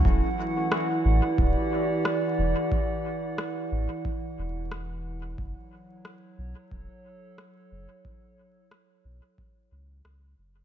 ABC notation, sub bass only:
X:1
M:4/4
L:1/8
Q:"Swing 16ths" 1/4=90
K:Edor
V:1 name="Sub bass" clef=bass
E,,, z2 A,,, D,,, z2 E,,, | z3 A,,, z E,,,3 | F,,, z2 B,,, E,,, z2 F,,, | z3 B,,, z C,, C,, F,,, |]